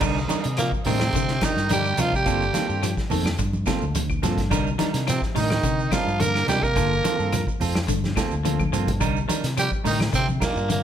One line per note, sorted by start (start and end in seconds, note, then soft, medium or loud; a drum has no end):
0.00 0.26 C2 medium
0.00 0.26 D3 medium
0.00 0.18 G3 medium
0.00 0.18 D4 medium
0.00 0.18 D#4 medium
0.00 0.19 A#4 medium
0.00 kick medium
0.00 crash medium
0.00 claves medium
0.00 shekere medium
0.18 shekere soft
0.28 0.55 D#3 medium
0.28 0.46 G3 medium
0.28 0.46 D4 medium
0.28 0.47 D#4 medium
0.28 0.47 A#4 medium
0.28 muted fingered electric bass stroke soft
0.28 snare soft
0.28 closed hi-hat medium
0.28 high conga loud
0.28 shekere medium
0.44 0.69 C3 medium
0.44 closed hi-hat medium
0.44 shekere soft
0.57 0.71 A#2 medium
0.57 0.82 F3 medium
0.57 0.71 A#3 medium
0.57 snare soft
0.57 closed hi-hat medium
0.57 claves medium
0.57 shekere medium
0.72 kick medium
0.72 shekere soft
0.85 1.11 A2 medium
0.85 1.45 C3 medium
0.85 1.11 D#3 medium
0.85 1.03 G3 medium
0.85 1.46 C4 medium
0.85 1.03 D4 medium
0.85 1.03 D#4 medium
0.85 1.04 A#4 medium
0.85 open hi-hat medium
0.85 low conga medium
0.85 shekere medium
1.00 snare medium
1.00 high conga medium
1.00 claves medium
1.00 shekere soft
1.12 1.38 C3 medium
1.12 1.39 D3 medium
1.12 kick medium
1.12 snare soft
1.12 closed hi-hat medium
1.12 shekere loud
1.28 snare soft
1.28 shekere soft
1.41 1.67 C3 medium
1.41 1.71 D#3 medium
1.41 1.59 D4 medium
1.41 1.71 D#4 medium
1.41 1.60 A#4 medium
1.41 muted clean electric guitar stroke medium
1.41 kick medium
1.41 snare medium
1.41 closed hi-hat medium
1.41 high conga medium
1.41 claves medium
1.41 shekere medium
1.57 1.93 G2 medium
1.57 snare soft
1.57 shekere soft
1.69 1.95 D3 medium
1.69 1.87 G3 medium
1.69 2.02 G3 medium
1.69 1.88 D4 medium
1.69 1.88 D#4 medium
1.69 2.02 G4 loud
1.69 1.88 A#4 medium
1.69 snare soft
1.69 closed hi-hat medium
1.69 high conga medium
1.69 shekere medium
1.84 claves medium
1.84 shekere soft
1.97 2.28 C3 medium
1.97 2.23 F3 medium
1.97 2.14 F3 medium
1.97 2.15 G3 medium
1.97 2.15 D4 medium
1.97 2.15 D#4 medium
1.97 2.14 F4 loud
1.97 2.16 A#4 medium
1.97 closed hi-hat medium
1.97 high conga medium
1.97 low conga medium
1.97 shekere medium
2.13 2.95 G3 medium
2.13 2.95 G4 loud
2.13 kick medium
2.13 shekere soft
2.25 2.51 G1 medium
2.25 2.51 D3 medium
2.25 2.43 A#3 medium
2.25 2.43 C4 medium
2.25 2.44 F4 medium
2.25 2.44 A4 medium
2.25 kick medium
2.25 closed hi-hat medium
2.25 claves medium
2.25 shekere medium
2.42 shekere soft
2.53 2.79 D#3 medium
2.53 2.69 A#3 medium
2.53 2.68 C4 medium
2.53 2.68 F4 medium
2.53 2.67 A4 medium
2.53 muted fingered electric bass stroke soft
2.53 snare soft
2.53 closed hi-hat medium
2.53 high conga medium
2.53 shekere medium
2.68 2.94 G2 medium
2.68 2.86 C4 soft
2.68 2.86 F4 soft
2.68 2.85 A4 soft
2.68 shekere soft
2.83 3.07 F3 medium
2.83 closed hi-hat medium
2.83 claves medium
2.83 shekere loud
2.97 kick medium
2.97 snare soft
2.97 shekere soft
3.10 3.35 F2 medium
3.10 3.35 D#3 medium
3.10 3.28 A#3 medium
3.10 3.28 C4 medium
3.10 3.28 A4 medium
3.10 open hi-hat medium
3.10 low conga medium
3.10 shekere medium
3.25 snare medium
3.25 high conga medium
3.25 claves medium
3.25 shekere soft
3.38 3.64 G2 medium
3.38 muted clean electric guitar stroke medium
3.38 kick medium
3.38 closed hi-hat medium
3.38 shekere medium
3.53 high conga medium
3.53 shekere soft
3.66 3.91 C3 medium
3.66 3.84 A#3 medium
3.66 3.84 C4 medium
3.66 3.84 F4 medium
3.66 3.84 A4 medium
3.66 kick medium
3.66 snare medium
3.66 closed hi-hat medium
3.66 high conga medium
3.66 claves medium
3.66 shekere medium
3.81 4.18 D2 medium
3.81 shekere soft
3.95 4.20 D3 medium
3.95 closed hi-hat medium
3.95 high conga medium
3.95 shekere medium
4.10 kick medium
4.10 claves medium
4.10 shekere soft
4.22 4.53 G2 medium
4.22 4.48 F3 medium
4.22 4.40 A#3 medium
4.22 4.40 C4 medium
4.22 4.41 F4 medium
4.22 4.41 A4 medium
4.22 snare soft
4.22 closed hi-hat medium
4.22 high conga medium
4.22 low conga medium
4.22 shekere medium
4.38 kick medium
4.38 snare soft
4.38 closed hi-hat medium
4.38 high conga medium
4.38 shekere soft
4.50 4.76 C2 medium
4.50 4.76 D3 medium
4.50 4.68 G3 medium
4.50 4.68 D4 loud
4.50 4.69 D#4 loud
4.50 4.69 A#4 loud
4.50 kick medium
4.50 snare soft
4.50 closed hi-hat medium
4.50 claves medium
4.50 shekere medium
4.67 shekere soft
4.78 5.03 D#3 medium
4.78 4.93 G3 medium
4.78 4.93 D4 medium
4.78 4.93 D#4 medium
4.78 4.92 A#4 medium
4.78 muted fingered electric bass stroke soft
4.78 snare soft
4.78 closed hi-hat medium
4.78 high conga loud
4.78 shekere medium
4.93 5.19 C3 medium
4.93 5.11 D4 soft
4.93 5.10 D#4 soft
4.93 5.10 A#4 soft
4.93 snare soft
4.93 closed hi-hat medium
4.93 shekere soft
5.07 5.32 F3 medium
5.07 5.22 C4 medium
5.07 snare soft
5.07 closed hi-hat medium
5.07 claves medium
5.07 shekere medium
5.12 5.23 C3 medium
5.22 kick medium
5.22 snare soft
5.22 shekere soft
5.34 5.60 A2 loud
5.34 5.60 D#3 medium
5.34 5.52 G3 medium
5.34 5.53 D4 medium
5.34 5.53 D#4 medium
5.34 5.89 D#4 medium
5.34 5.53 A#4 medium
5.34 open hi-hat medium
5.34 low conga medium
5.34 shekere medium
5.39 5.90 D#3 medium
5.50 snare medium
5.50 high conga medium
5.50 claves medium
5.50 shekere soft
5.63 5.88 C3 medium
5.63 5.88 D3 medium
5.63 kick medium
5.63 closed hi-hat medium
5.63 shekere medium
5.79 shekere soft
5.91 6.16 C3 medium
5.91 6.24 F3 medium
5.91 6.09 G3 medium
5.91 6.09 D4 medium
5.91 6.09 D#4 medium
5.91 6.22 F4 medium
5.91 6.09 A#4 medium
5.91 kick medium
5.91 snare medium
5.91 closed hi-hat medium
5.91 high conga medium
5.91 claves medium
5.91 shekere medium
6.07 6.43 G2 medium
6.07 shekere soft
6.20 6.44 D3 medium
6.20 6.49 A#3 medium
6.20 6.48 A#4 loud
6.20 closed hi-hat medium
6.20 high conga medium
6.20 shekere medium
6.35 snare soft
6.35 claves medium
6.35 shekere soft
6.47 6.78 C3 medium
6.47 6.73 F3 medium
6.47 6.65 G3 medium
6.47 6.66 G3 medium
6.47 6.65 D4 medium
6.47 6.65 D#4 medium
6.47 6.65 G4 loud
6.47 6.65 A#4 medium
6.47 snare soft
6.47 closed hi-hat soft
6.47 high conga medium
6.47 low conga medium
6.47 shekere medium
6.63 7.48 A#3 medium
6.63 7.47 A#4 loud
6.63 kick medium
6.63 shekere soft
6.75 7.01 G1 medium
6.75 7.01 D3 medium
6.75 6.93 A#3 medium
6.75 6.93 F4 medium
6.75 6.94 A4 medium
6.75 muted clean electric guitar stroke medium
6.75 kick medium
6.75 closed hi-hat medium
6.75 claves medium
6.75 shekere medium
6.93 shekere soft
7.04 7.28 D#3 medium
7.04 7.19 A#3 medium
7.04 7.19 C4 medium
7.04 7.18 F4 medium
7.04 7.18 A4 medium
7.04 muted fingered electric bass stroke soft
7.04 closed hi-hat medium
7.04 high conga loud
7.04 shekere medium
7.19 7.44 G2 medium
7.19 7.36 C4 soft
7.19 7.35 F4 soft
7.19 7.35 A4 medium
7.19 shekere soft
7.32 7.57 F3 medium
7.32 closed hi-hat medium
7.32 low conga medium
7.32 claves medium
7.32 shekere medium
7.47 kick medium
7.47 shekere soft
7.60 7.85 F2 medium
7.60 7.78 C4 medium
7.60 7.78 F4 medium
7.60 7.78 A4 medium
7.60 muted clean electric guitar stroke medium
7.60 open hi-hat medium
7.60 low conga medium
7.60 shekere medium
7.75 snare medium
7.75 high conga medium
7.75 claves medium
7.75 shekere soft
7.88 8.13 G2 medium
7.88 8.13 D3 medium
7.88 kick medium
7.88 closed hi-hat medium
7.88 shekere medium
8.04 snare soft
8.04 high conga medium
8.04 shekere soft
8.16 8.41 C3 medium
8.16 8.34 A#3 medium
8.16 8.34 C4 medium
8.16 8.34 F4 medium
8.16 8.34 A4 medium
8.16 kick medium
8.16 snare medium
8.16 closed hi-hat medium
8.16 high conga medium
8.16 low conga medium
8.16 claves medium
8.16 shekere medium
8.31 8.68 D2 medium
8.31 shekere soft
8.44 8.69 D3 medium
8.44 8.62 A#3 medium
8.44 8.62 C4 medium
8.44 8.62 F4 medium
8.44 8.62 A4 medium
8.44 closed hi-hat medium
8.44 high conga medium
8.44 shekere medium
8.59 kick medium
8.59 high conga medium
8.59 claves medium
8.59 shekere soft
8.72 9.02 G2 medium
8.72 8.97 F3 medium
8.72 8.90 A#3 medium
8.72 8.90 C4 medium
8.72 8.90 F4 medium
8.72 8.90 A4 medium
8.72 closed hi-hat medium
8.72 low conga medium
8.72 shekere medium
8.88 kick medium
8.88 closed hi-hat medium
8.88 low conga medium
8.88 shekere soft
9.00 9.25 C2 medium
9.00 9.25 D3 medium
9.00 9.18 G3 medium
9.00 9.18 D4 loud
9.00 9.18 D#4 medium
9.00 9.18 A#4 medium
9.00 kick medium
9.00 closed hi-hat medium
9.00 claves medium
9.00 shekere medium
9.16 shekere soft
9.28 9.53 D#3 medium
9.28 9.46 G3 medium
9.28 9.46 D4 medium
9.28 9.46 D#4 medium
9.28 9.46 A#4 medium
9.28 muted fingered electric bass stroke soft
9.28 closed hi-hat medium
9.28 high conga medium
9.28 shekere medium
9.44 9.68 C3 medium
9.44 snare soft
9.44 closed hi-hat medium
9.44 shekere soft
9.57 9.81 F3 medium
9.57 9.71 G3 medium
9.57 9.71 G4 loud
9.57 snare soft
9.57 closed hi-hat medium
9.57 claves medium
9.57 shekere medium
9.72 kick medium
9.72 shekere soft
9.83 10.09 A2 medium
9.83 10.09 D3 medium
9.83 10.02 G3 medium
9.83 10.02 D4 medium
9.83 10.02 D#4 medium
9.83 9.99 D#4 medium
9.83 10.02 A#4 medium
9.83 open hi-hat medium
9.83 low conga medium
9.83 shekere medium
9.88 10.00 D#3 medium
10.00 snare medium
10.00 high conga medium
10.00 claves medium
10.00 shekere soft
10.13 10.38 C3 medium
10.13 10.28 C3 medium
10.13 10.37 D3 medium
10.13 10.27 C4 loud
10.13 kick medium
10.13 closed hi-hat medium
10.13 shekere medium
10.29 high conga medium
10.29 shekere soft
10.40 10.58 G3 medium
10.40 10.68 A#3 medium
10.40 10.58 D4 medium
10.40 10.58 D#4 medium
10.40 10.58 A#4 medium
10.40 kick medium
10.40 snare medium
10.40 closed hi-hat medium
10.40 high conga medium
10.40 low conga medium
10.40 claves medium
10.40 shekere medium
10.45 10.69 A#2 medium
10.56 10.83 G2 medium
10.56 shekere soft
10.69 10.83 A#2 medium
10.69 10.83 D3 medium
10.69 10.83 A#3 medium
10.69 closed hi-hat medium
10.69 high conga medium
10.69 shekere medium